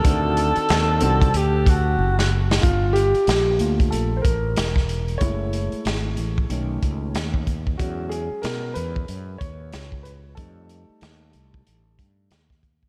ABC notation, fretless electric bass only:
X:1
M:4/4
L:1/16
Q:"Swing 16ths" 1/4=93
K:Dm
V:1 name="Fretless electric bass" clef=bass
D,,3 z _E,,2 C,,2 D,,4 ^F,,,4 | G,,,3 z B,,,2 D,,2 B,,,2 A,,,2 E,,,4 | ^F,,,3 z ^G,,,2 A,,,2 =B,,,2 ^C,,2 ^D,,4 | E,,3 z =B,,2 E,,2 ^F,,2 _E,,2 ^C,,4 |
F,,3 z _E,,2 C,,2 A,,,2 G,,2 E,,4 |]